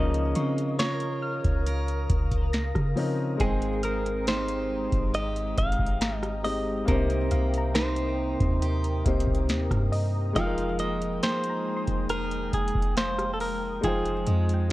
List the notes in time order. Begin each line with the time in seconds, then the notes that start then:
Already playing: C#2 C#3 F3 A#3 C#4 D#4 G#4 A#4 D#5 F5 A#5 D#6
0.14 closed hi-hat
0.35 C#3 C4 C#6, closed hi-hat
0.58 closed hi-hat
0.79 F4 A#4 C#5, snare, closed hi-hat
1.00 closed hi-hat
1.23 F6
1.44 C#2, kick, closed hi-hat
1.66 A#4, closed hi-hat
1.88 closed hi-hat
2.10 C#2, kick, closed hi-hat
2.31 kick, closed hi-hat
2.53 A#6, snare, closed hi-hat
2.75 C#3, kick, cross-stick, closed hi-hat
2.96 F3 C4 C#4 D#4 A#4, open hi-hat
3.37 G#1 G#3 C4 D#4 G#4 G5, kick, closed hi-hat
3.42 C5 G5
3.62 closed hi-hat
3.83 C4 A#4 F6, closed hi-hat
4.06 closed hi-hat
4.27 C4 D#4 G4 C5, snare, closed hi-hat
4.48 closed hi-hat
4.92 G#1, kick, closed hi-hat
5.14 G4 D#5, closed hi-hat
5.36 closed hi-hat
5.57 G#1 F5, kick, closed hi-hat
5.72 closed hi-hat
5.79 kick
5.87 closed hi-hat
6.01 A#5, snare, closed hi-hat
6.17 D#5
6.23 cross-stick, closed hi-hat
6.43 G#3 C4 D#4 G4 D#5, open hi-hat
6.85 C2 C3 A#3 C4 D4 A#4 D#6, kick, closed hi-hat
6.90 G4 C5
6.95 D#4
7.10 closed hi-hat
7.31 C2 A#3 F5, closed hi-hat
7.54 A#5, closed hi-hat
7.75 A#3 D#4 G4 C5, snare, closed hi-hat
7.96 closed hi-hat
8.40 D#2, kick, closed hi-hat
8.62 G4, closed hi-hat
8.84 closed hi-hat
9.04 C2 A#3 C4 D#4 G4 C5, kick, closed hi-hat
9.20 closed hi-hat
9.27 kick
9.34 closed hi-hat
9.49 D#2, snare, closed hi-hat
9.71 G2, kick, cross-stick, closed hi-hat
9.92 D#5, open hi-hat
10.33 F1 F3 G#3 D#4 F4 F5 G5 A#5, kick, closed hi-hat
10.38 G#4 G5
10.46 A#4
10.58 closed hi-hat
10.79 A#3 D#5, closed hi-hat
11.02 closed hi-hat
11.23 A#3 D#4 G#4 C5 G5, snare, closed hi-hat
11.44 closed hi-hat
11.50 A#5
11.77 C6
11.88 F1, kick, closed hi-hat
12.10 G#4 A#4, closed hi-hat
12.31 closed hi-hat
12.53 F1 G#4, kick, closed hi-hat
12.68 closed hi-hat
12.75 kick
12.82 closed hi-hat
12.97 C5 F5, snare, closed hi-hat
13.19 cross-stick, closed hi-hat
13.34 A4
13.40 A#4, open hi-hat
13.81 F1 F3 G#3 D#4 F4 G#4 F5, kick, closed hi-hat
13.86 C5 G5
14.05 closed hi-hat
14.27 F2 G#3 D#5, closed hi-hat
14.49 closed hi-hat
14.54 G5